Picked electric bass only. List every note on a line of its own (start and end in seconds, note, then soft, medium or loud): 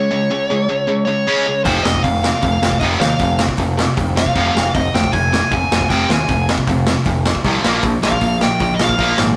1.65 1.79 F1 medium
1.85 1.99 F1 medium
2.04 2.31 F1 medium
2.43 2.56 F1 medium
2.62 2.76 F1 medium
2.81 2.95 F1 medium
3.00 3.14 D#2 medium
3.20 3.47 F1 medium
3.58 3.85 F1 medium
3.97 4.24 F1 medium
4.35 4.49 F1 medium
4.56 4.69 F1 medium
4.75 4.88 F1 medium
4.94 5.08 F1 loud
5.13 5.40 F1 medium
5.51 5.65 F1 medium
5.72 5.85 F1 medium
5.90 6.03 F1 medium
6.09 6.23 D#2 medium
6.28 6.55 F1 medium
6.67 6.94 F1 medium
7.06 7.33 F1 medium
7.44 7.58 C2 medium
7.64 7.78 A#1 medium
7.83 7.97 A#1 medium
8.03 8.16 A#1 medium
8.21 8.49 A#1 medium
8.61 8.74 A#1 medium
8.80 8.93 A#1 medium
8.99 9.12 A#1 medium
9.20 9.33 G#1 loud